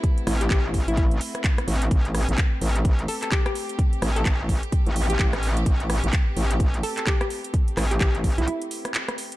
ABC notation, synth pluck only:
X:1
M:4/4
L:1/16
Q:"Swing 16ths" 1/4=128
K:Am
V:1 name="Synth pluck"
z3 G G z2 E E z6 z | z8 z2 A A G G z2 | z3 A z6 z G G z3 | z8 z2 A A G G z2 |
z3 G G z2 E E z6 z |]